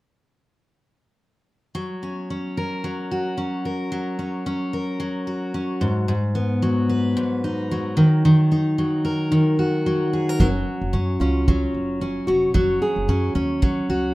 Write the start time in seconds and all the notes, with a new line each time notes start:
1.75 F#3
2.03 C#4
2.30 C#4
2.57 A#4
2.84 F#3
3.11 F#4
3.37 C#4
3.65 A#4
3.92 F#3
4.19 C#4
4.46 C#4
4.73 A#4
5.00 F#3
5.27 F#4
5.54 C#4
5.81 G#2
6.08 G#2
6.35 B3
6.62 F#3
6.89 B4
7.17 G#2
7.44 D#4
7.71 F#3
7.97 D#3
8.25 D#3
8.52 D#4
8.78 F#3
9.05 A#4
9.32 D#3
9.59 F#4
9.86 F#3
10.13 G#4
10.29 A#4
10.40 F#1 F#3 C#4, kick
10.81 F#1
10.93 F#2 C#4
11.20 C#2 C#4 F4
11.48 F#3, kick
11.74 F#1
12.01 C#4
12.27 F1 C#4 F#4
12.54 F#1 F#3 F#4, kick
12.82 G#4
12.96 F#1
13.08 F#2 C#4
13.35 D#2 C#4
13.62 F#3, kick
13.89 C#2 F#4